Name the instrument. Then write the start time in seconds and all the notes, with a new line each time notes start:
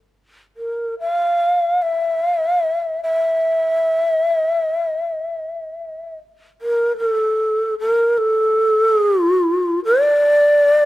shakuhachi
0.57 A#4
1.00 F5
1.82 E5
3.03 E5
6.62 A#4
6.98 A4
7.80 A#4
8.18 A4
9.27 F4
9.85 D5